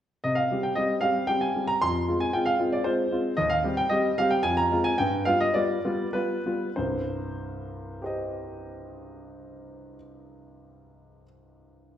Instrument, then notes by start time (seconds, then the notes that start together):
grand piano
0.24 C3 D#5
0.35 F5
0.51 G3 C4 G4
0.63 G5
0.75 G3 C4 G4 D#5
1.01 G3 C4 G4 F5
1.27 G3 C4 G4 G5
1.41 G#5
1.55 G3 C4 G4
1.68 A#5
1.82 F2 C6
2.08 G#3 C4 F4
2.20 G#5
2.33 G#3 C4 F4 G5
2.46 F5
2.59 G#3 C4 F4
2.72 D5
2.84 G#3 C4 F4 C5
3.11 G#3 C4 F4
3.37 D#2 D#5
3.50 F5
3.64 G3 C4 G4
3.77 G5
3.89 G3 C4 G4 D#5
4.18 G3 C4 G4 F5
4.31 G5
4.43 F2 G#5
4.57 A#5
4.71 G#3 C4 F4
4.84 G#5
4.98 G2 G5
5.25 G3 B3 F4 F5
5.40 D#5
5.54 G3 B3 F4 D5
5.85 G3 B3 F4
6.13 G3 B3 F4 B4
6.46 G3 B3 F4
6.76 C2 G2 C5
8.02 G4 C5 D#5